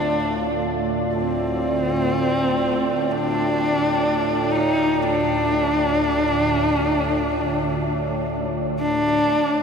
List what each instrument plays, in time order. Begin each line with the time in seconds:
Already playing: synth drone D2 A2, analog synth pad A3 F4 D5 F5, horsehead fiddle D4
1.15 horsehead fiddle C4
1.72 analog synth pad G5
3.12 horsehead fiddle D4
4.51 horsehead fiddle D#4
5.03 horsehead fiddle D4
8.79 synth drone D2 A2, horsehead fiddle D4